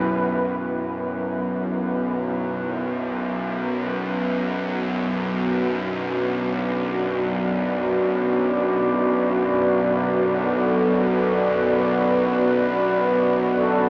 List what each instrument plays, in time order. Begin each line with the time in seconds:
Already playing: synth drone B1 F#2, ambient pad B3 E4 B4 F#5 G5
0.60 synth drone B1 F#2, ambient pad B3, singing bowl F#4
1.80 ambient pad F#4
4.45 ambient pad D5
10.01 soft synth lead A4
11.79 soft synth lead B4
12.37 soft synth lead B4
13.56 soft synth lead A4